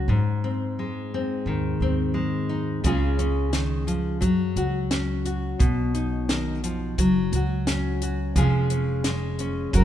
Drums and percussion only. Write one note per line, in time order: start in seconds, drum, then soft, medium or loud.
2.84 kick medium
2.84 closed hi-hat medium
3.19 closed hi-hat soft
3.53 snare medium
3.53 closed hi-hat medium
3.88 closed hi-hat soft
4.22 kick medium
4.22 closed hi-hat medium
4.57 closed hi-hat soft
4.91 snare medium
4.91 closed hi-hat medium
5.25 closed hi-hat soft
5.60 kick medium
5.60 closed hi-hat medium
5.95 closed hi-hat soft
6.29 snare medium
6.29 closed hi-hat medium
6.64 closed hi-hat soft
6.98 kick medium
6.98 closed hi-hat medium
7.33 closed hi-hat soft
7.67 snare medium
7.67 closed hi-hat medium
8.02 closed hi-hat medium
8.36 kick medium
8.36 closed hi-hat medium
8.70 closed hi-hat medium
9.04 snare medium
9.04 closed hi-hat medium
9.39 closed hi-hat soft
9.73 kick medium
9.73 closed hi-hat medium